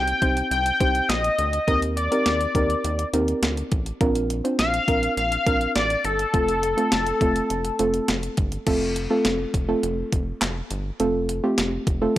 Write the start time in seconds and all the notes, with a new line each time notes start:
Already playing: C2 G5
0.08 closed hi-hat
0.22 C2 C4 D#4 G4 C5, kick, closed hi-hat
0.37 closed hi-hat
0.51 C2 G5, closed hi-hat
0.66 closed hi-hat
0.80 C2 C4 D#4 G4 C5, kick, closed hi-hat
0.95 closed hi-hat
1.09 A#1 D#5, snare, closed hi-hat
1.24 closed hi-hat
1.39 D2, closed hi-hat
1.53 closed hi-hat
1.67 D#2 C4 D#4 G4 A#4 D#5, kick, closed hi-hat
1.82 closed hi-hat
1.96 D5, closed hi-hat
2.11 C4 D#4 G4 A#4, closed hi-hat
2.26 D#2, snare, closed hi-hat
2.41 closed hi-hat
2.55 D#2 C4 D#4 G4 A#4, kick, closed hi-hat
2.70 closed hi-hat
2.84 D#2, closed hi-hat
2.99 closed hi-hat
3.13 D#2 C4 D#4 G4 A#4, closed hi-hat
3.28 closed hi-hat
3.43 D2, snare, closed hi-hat
3.57 closed hi-hat
3.72 A1, kick, closed hi-hat
3.86 closed hi-hat
4.01 A#1 C4 D4 F4 A#4, kick, closed hi-hat
4.15 closed hi-hat
4.30 closed hi-hat
4.44 C4 D4 F4 C5, closed hi-hat
4.59 A#1 F5, snare, closed hi-hat
4.74 closed hi-hat
4.88 A#1 C4 D4 F4 A#4, kick, closed hi-hat
5.03 closed hi-hat
5.17 A#1 F5, closed hi-hat
5.32 closed hi-hat
5.46 A#1 C4 D4 F4 A#4, kick, closed hi-hat
5.61 closed hi-hat
5.76 A1 D5, snare, closed hi-hat
5.90 closed hi-hat
6.05 G1 A4, closed hi-hat
6.19 closed hi-hat
6.34 F1 A3 C4 F4 A4, kick, closed hi-hat
6.48 closed hi-hat
6.63 closed hi-hat
6.77 A3 C4 F4 A4, closed hi-hat
6.92 F1, snare, closed hi-hat
7.07 closed hi-hat
7.21 F1 A3 C4 F4 A4, kick, closed hi-hat
7.36 closed hi-hat
7.50 F1, closed hi-hat
7.65 closed hi-hat
7.79 F1 A3 C4 F4 A4, closed hi-hat
7.94 closed hi-hat
8.08 F1, snare, closed hi-hat
8.23 closed hi-hat
8.37 G1, kick, closed hi-hat
8.52 closed hi-hat
8.67 F1 A3 C4 F4 A4, kick, closed hi-hat, crash
8.96 closed hi-hat
9.10 A3 C4 F4 A4
9.25 F1, snare, closed hi-hat
9.54 F1, kick, closed hi-hat
9.69 A3 C4 F4 A4
9.83 F1, closed hi-hat
10.12 F1, kick, closed hi-hat
10.41 F1, snare, clap, closed hi-hat
10.71 G1, closed hi-hat
11.00 F1 A3 C4 F4 A4, closed hi-hat
11.29 closed hi-hat
11.44 A3 C4 F4 G4
11.58 F1, snare, closed hi-hat
11.87 F1, kick, closed hi-hat
12.02 A3 C4 F4 A4